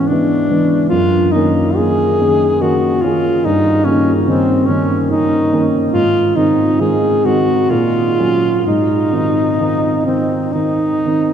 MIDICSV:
0, 0, Header, 1, 3, 480
1, 0, Start_track
1, 0, Tempo, 811908
1, 521, Time_signature, 3, 2, 24, 8
1, 522, Tempo, 890208
1, 1002, Tempo, 836820
1, 3882, Tempo, 904977
1, 4362, Tempo, 944882
1, 5322, Tempo, 969305
1, 6186, End_track
2, 0, Start_track
2, 0, Title_t, "Alto saxophone"
2, 0, Program_c, 0, 65
2, 43, Note_on_c, 0, 62, 64
2, 522, Note_off_c, 0, 62, 0
2, 525, Note_on_c, 0, 65, 73
2, 757, Note_on_c, 0, 63, 57
2, 765, Note_off_c, 0, 65, 0
2, 995, Note_on_c, 0, 68, 70
2, 1004, Note_off_c, 0, 63, 0
2, 1484, Note_on_c, 0, 66, 54
2, 1492, Note_off_c, 0, 68, 0
2, 1716, Note_on_c, 0, 65, 65
2, 1725, Note_off_c, 0, 66, 0
2, 1963, Note_on_c, 0, 63, 69
2, 1971, Note_off_c, 0, 65, 0
2, 2189, Note_on_c, 0, 61, 66
2, 2198, Note_off_c, 0, 63, 0
2, 2355, Note_off_c, 0, 61, 0
2, 2425, Note_on_c, 0, 60, 69
2, 2659, Note_on_c, 0, 61, 59
2, 2668, Note_off_c, 0, 60, 0
2, 2905, Note_off_c, 0, 61, 0
2, 2912, Note_on_c, 0, 63, 59
2, 3243, Note_off_c, 0, 63, 0
2, 3386, Note_on_c, 0, 65, 76
2, 3633, Note_on_c, 0, 63, 62
2, 3642, Note_off_c, 0, 65, 0
2, 3887, Note_on_c, 0, 68, 60
2, 3895, Note_off_c, 0, 63, 0
2, 4123, Note_on_c, 0, 66, 61
2, 4131, Note_off_c, 0, 68, 0
2, 4365, Note_on_c, 0, 65, 68
2, 4372, Note_off_c, 0, 66, 0
2, 4849, Note_off_c, 0, 65, 0
2, 4854, Note_on_c, 0, 63, 58
2, 5543, Note_off_c, 0, 63, 0
2, 5552, Note_on_c, 0, 60, 50
2, 5785, Note_on_c, 0, 63, 55
2, 5792, Note_off_c, 0, 60, 0
2, 6186, Note_off_c, 0, 63, 0
2, 6186, End_track
3, 0, Start_track
3, 0, Title_t, "Grand piano"
3, 0, Program_c, 1, 0
3, 0, Control_c, 1, 64, 127
3, 0, Note_on_c, 1, 44, 37
3, 0, Note_on_c, 1, 52, 34
3, 0, Note_on_c, 1, 56, 33
3, 0, Note_on_c, 1, 59, 36
3, 59, Note_off_c, 1, 52, 0
3, 59, Note_on_c, 1, 52, 31
3, 63, Note_off_c, 1, 56, 0
3, 63, Note_on_c, 1, 56, 33
3, 65, Note_off_c, 1, 59, 0
3, 65, Note_on_c, 1, 59, 33
3, 266, Note_off_c, 1, 52, 0
3, 268, Note_off_c, 1, 56, 0
3, 270, Note_off_c, 1, 59, 0
3, 295, Note_on_c, 1, 52, 34
3, 295, Note_on_c, 1, 56, 34
3, 298, Note_on_c, 1, 59, 37
3, 505, Note_off_c, 1, 52, 0
3, 505, Note_off_c, 1, 56, 0
3, 507, Note_off_c, 1, 59, 0
3, 529, Control_c, 1, 64, 0
3, 535, Note_off_c, 1, 44, 0
3, 539, Note_on_c, 1, 42, 37
3, 618, Control_c, 1, 64, 127
3, 759, Note_off_c, 1, 42, 0
3, 773, Note_on_c, 1, 51, 35
3, 776, Note_on_c, 1, 58, 35
3, 777, Note_on_c, 1, 61, 38
3, 988, Note_off_c, 1, 51, 0
3, 989, Note_off_c, 1, 58, 0
3, 990, Note_off_c, 1, 61, 0
3, 1006, Note_on_c, 1, 51, 33
3, 1013, Note_on_c, 1, 58, 38
3, 1014, Note_on_c, 1, 61, 35
3, 1227, Note_off_c, 1, 51, 0
3, 1230, Note_off_c, 1, 58, 0
3, 1231, Note_off_c, 1, 61, 0
3, 1254, Note_on_c, 1, 51, 35
3, 1254, Note_on_c, 1, 61, 37
3, 1255, Note_on_c, 1, 58, 34
3, 1466, Note_off_c, 1, 51, 0
3, 1466, Note_off_c, 1, 58, 0
3, 1466, Note_off_c, 1, 61, 0
3, 1482, Note_on_c, 1, 51, 37
3, 1485, Note_on_c, 1, 58, 35
3, 1485, Note_on_c, 1, 61, 40
3, 1699, Note_off_c, 1, 51, 0
3, 1701, Note_off_c, 1, 58, 0
3, 1701, Note_off_c, 1, 61, 0
3, 1730, Note_on_c, 1, 51, 38
3, 1730, Note_on_c, 1, 58, 35
3, 1732, Note_on_c, 1, 61, 41
3, 1942, Note_off_c, 1, 51, 0
3, 1942, Note_off_c, 1, 58, 0
3, 1943, Note_off_c, 1, 61, 0
3, 1965, Note_on_c, 1, 43, 43
3, 1971, Control_c, 1, 64, 0
3, 2041, Control_c, 1, 64, 127
3, 2194, Note_off_c, 1, 43, 0
3, 2201, Note_on_c, 1, 51, 38
3, 2201, Note_on_c, 1, 58, 40
3, 2206, Note_on_c, 1, 61, 40
3, 2415, Note_off_c, 1, 51, 0
3, 2415, Note_off_c, 1, 58, 0
3, 2418, Note_off_c, 1, 61, 0
3, 2436, Note_on_c, 1, 51, 39
3, 2441, Note_on_c, 1, 58, 36
3, 2441, Note_on_c, 1, 61, 41
3, 2652, Note_off_c, 1, 51, 0
3, 2654, Note_off_c, 1, 58, 0
3, 2654, Note_off_c, 1, 61, 0
3, 2674, Note_on_c, 1, 51, 37
3, 2675, Note_on_c, 1, 61, 39
3, 2676, Note_on_c, 1, 58, 37
3, 2890, Note_off_c, 1, 51, 0
3, 2890, Note_off_c, 1, 58, 0
3, 2890, Note_off_c, 1, 61, 0
3, 2915, Note_on_c, 1, 51, 37
3, 2915, Note_on_c, 1, 58, 37
3, 2920, Note_on_c, 1, 61, 37
3, 3130, Note_off_c, 1, 51, 0
3, 3130, Note_off_c, 1, 58, 0
3, 3132, Note_off_c, 1, 61, 0
3, 3154, Note_on_c, 1, 51, 38
3, 3156, Note_on_c, 1, 58, 36
3, 3157, Note_on_c, 1, 61, 37
3, 3370, Note_off_c, 1, 51, 0
3, 3371, Note_off_c, 1, 58, 0
3, 3371, Note_off_c, 1, 61, 0
3, 3394, Note_on_c, 1, 44, 40
3, 3401, Control_c, 1, 64, 0
3, 3494, Control_c, 1, 64, 127
3, 3628, Note_off_c, 1, 44, 0
3, 3630, Note_on_c, 1, 51, 36
3, 3635, Note_on_c, 1, 56, 37
3, 3640, Note_on_c, 1, 60, 41
3, 3858, Note_off_c, 1, 51, 0
3, 3860, Note_off_c, 1, 56, 0
3, 3863, Note_off_c, 1, 60, 0
3, 3884, Note_on_c, 1, 51, 32
3, 3884, Note_on_c, 1, 56, 35
3, 3886, Note_on_c, 1, 60, 38
3, 4098, Note_off_c, 1, 51, 0
3, 4098, Note_off_c, 1, 56, 0
3, 4099, Note_off_c, 1, 60, 0
3, 4122, Note_on_c, 1, 56, 34
3, 4123, Note_on_c, 1, 51, 34
3, 4126, Note_on_c, 1, 60, 34
3, 4343, Note_off_c, 1, 51, 0
3, 4343, Note_off_c, 1, 56, 0
3, 4345, Note_off_c, 1, 60, 0
3, 4365, Note_on_c, 1, 46, 42
3, 4372, Control_c, 1, 64, 0
3, 4453, Control_c, 1, 64, 127
3, 4598, Note_off_c, 1, 46, 0
3, 4610, Note_on_c, 1, 54, 32
3, 4613, Note_on_c, 1, 61, 40
3, 4831, Note_off_c, 1, 54, 0
3, 4832, Note_off_c, 1, 61, 0
3, 4850, Note_on_c, 1, 44, 37
3, 4856, Control_c, 1, 64, 0
3, 4931, Control_c, 1, 64, 127
3, 5081, Note_off_c, 1, 44, 0
3, 5084, Note_on_c, 1, 51, 31
3, 5086, Note_on_c, 1, 60, 29
3, 5087, Note_on_c, 1, 63, 34
3, 5300, Note_off_c, 1, 51, 0
3, 5302, Note_off_c, 1, 60, 0
3, 5302, Note_off_c, 1, 63, 0
3, 5324, Note_on_c, 1, 51, 31
3, 5330, Note_on_c, 1, 60, 30
3, 5330, Note_on_c, 1, 63, 34
3, 5534, Note_off_c, 1, 51, 0
3, 5538, Note_off_c, 1, 60, 0
3, 5538, Note_off_c, 1, 63, 0
3, 5556, Note_on_c, 1, 60, 30
3, 5557, Note_on_c, 1, 51, 28
3, 5558, Note_on_c, 1, 63, 32
3, 5773, Note_off_c, 1, 60, 0
3, 5774, Note_off_c, 1, 51, 0
3, 5774, Note_off_c, 1, 63, 0
3, 5795, Note_on_c, 1, 60, 28
3, 5796, Note_on_c, 1, 51, 29
3, 5801, Note_on_c, 1, 63, 33
3, 6020, Note_off_c, 1, 51, 0
3, 6020, Note_off_c, 1, 60, 0
3, 6023, Note_off_c, 1, 63, 0
3, 6047, Note_on_c, 1, 51, 30
3, 6048, Note_on_c, 1, 60, 32
3, 6050, Note_on_c, 1, 63, 37
3, 6186, Note_off_c, 1, 51, 0
3, 6186, Note_off_c, 1, 60, 0
3, 6186, Note_off_c, 1, 63, 0
3, 6186, End_track
0, 0, End_of_file